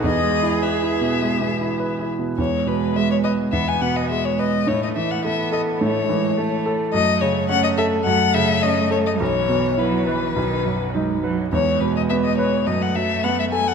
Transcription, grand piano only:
X:1
M:4/4
L:1/8
Q:1/4=105
K:E
V:1 name="Grand piano" clef=bass
(3E,, G, E (3B E B,, (3G, B,, E (3B E B,, | E,, B,, G, B E,, B,, G, B | A,, E, A, A A,, E, A, A | F,, C, C A F,, C, C A |
B,,, B,, E B B,,, F,, D B | E,, B,, B, B F,, F, B, A |]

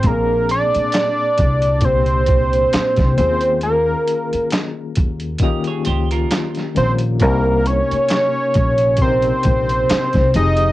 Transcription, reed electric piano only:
X:1
M:4/4
L:1/16
Q:"Swing 16ths" 1/4=67
K:Cphr
V:1 name="Reed electric piano"
[B,,B,C=DA]6 z2 [B,,B,CDG]4- [B,,B,CDG] z [E,B,_DFA]2- | [E,B,DFA]4 z4 [E,B,DFG]4- [E,B,DFG] z [E,B,DFB]2 | [C,B,EGB]6 z2 [C,CDEGB]4- [C,CDEGB] z [F,CEGA]2 |]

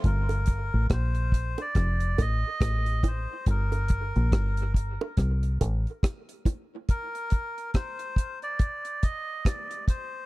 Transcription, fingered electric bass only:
X:1
M:4/4
L:1/16
Q:"Swing 16ths" 1/4=70
K:Gm
V:1 name="Fingered electric bass" clef=bass
G,,,3 A,,, B,,,3 z F,,,2 A,,, z A,,,3 z | G,,,3 B,,, G,,,3 z C,,2 A,,, z4 z | z16 |]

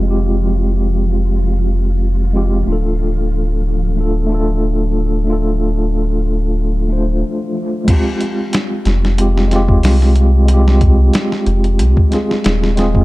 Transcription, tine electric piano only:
X:1
M:4/4
L:1/8
Q:"Swing 16ths" 1/4=92
K:Fdor
V:1 name="Tine electric piano"
[A,CFG]6- [A,CFG] [A,CFG] | [=A,DF=A]4 [A,DFA] [A,DFA]3 | [=A,DF=A]4- [A,DFA] [A,DFc] z2 | [A,CFG]4 [A,CFG] [A,CFG]3 |
[A,CFG]4- [A,CFG] [A,CFA]2 [A,CFA] |]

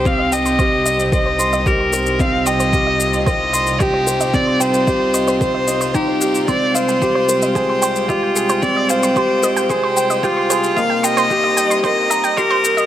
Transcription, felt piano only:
X:1
M:4/4
L:1/8
Q:1/4=112
K:Cm
V:1 name="Felt piano"
C g G e c c' G c | C g G e c c' G c | C g G e c e E G | C f G c A g G A |
C f G c A g G A | B, g G e B b G B |]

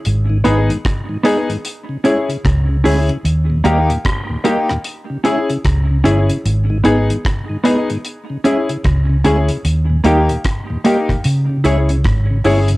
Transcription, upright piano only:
X:1
M:4/4
L:1/16
Q:"Swing 16ths" 1/4=75
K:C#dor
V:1 name="Upright piano"
z2 [B,DG] z3 [B,DG] z3 [CEG] z3 [CEG] z | z2 [A,D=G] z3 [A,DG] z3 [CE^G] z3 [CEG] z | z2 [B,DG] z3 [B,DG] z3 [CEG] z3 [CEG] z | z2 [A,D=G] z3 [A,DG] z3 [CE^G] z3 [CEG] z |]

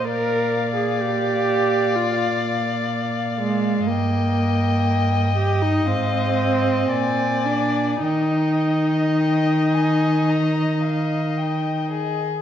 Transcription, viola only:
X:1
M:4/4
L:1/16
Q:1/4=60
K:Eb
V:1 name="Viola"
B3 A G4 F2 z4 A,2 | B,6 G E C6 D2 | E12- E2 z2 |]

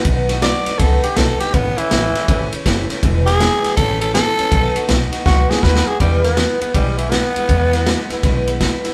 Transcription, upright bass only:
X:1
M:4/4
L:1/8
Q:"Swing" 1/4=161
K:E
V:1 name="Upright bass" clef=bass
B,,,3 z C,, z B,,, z | A,,, z A,,, z G,,, z F,,, z | E,,,3 z A,,,3 z | B,,, z B,,, z C,, z D,, z |
E,,3 z B,,,3 z | E,,3 z B,,,3 z |]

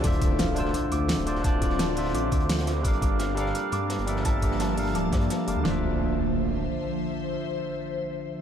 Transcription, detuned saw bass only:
X:1
M:4/4
L:1/16
Q:1/4=171
K:Dm
V:1 name="Detuned saw bass" clef=bass
D,,,8 z2 D,,3 D,,,3 | D,,,6 D,,,2 A,,,2 D,,2 D,,4 | G,,,8 z2 G,,3 G,,,3 | G,,,6 G,,,2 D,,,2 G,,2 z2 F,,, D,, |
D,,,12 z4 | z16 |]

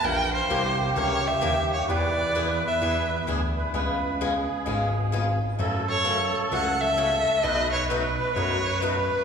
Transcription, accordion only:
X:1
M:4/4
L:1/8
Q:"Swing" 1/4=130
K:Emix
V:1 name="Accordion"
^A2 =G6 | B6 G B | B2 G4- G z | A8 |
B8 |]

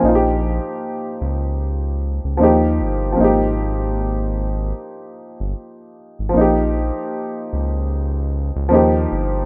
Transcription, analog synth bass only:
X:1
M:4/4
L:1/16
Q:"Swing 16ths" 1/4=76
K:Bbdor
V:1 name="Analog synth bass" clef=bass
B,,,3 z3 D,,4- D,, D,, E,,2 G,,,2 | A,,,8 z3 G,,, z3 A,,, | B,,,3 z3 D,,4- D,, D,, E,,2 G,,,2 |]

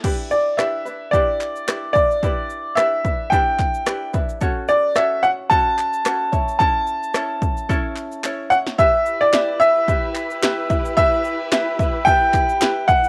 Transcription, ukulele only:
X:1
M:4/4
L:1/8
Q:"Swing 16ths" 1/4=110
K:Glyd
V:1 name="Ukulele"
[DEGB]2 [DEGB] [DEB] [DEGB]2 [DEGB] [DEB] | [DEGB]2 [DEGB] [DEB] [DEGB]2 [DEGB] [DEB] | [CFAc]2 [CFAc] [CFc] [CFAc]2 [CFAc] [CEc] | [CEAc]2 [CEAc]2 [CEAc]2 [CEAc] [CEc] |
[EGBe]2 [EGBe] [EBe] [EGBe]2 [EGBe] [EBe] | [EGBe]2 [EGBe] [EBe] [EGBe]2 [EGBe] [EBe] |]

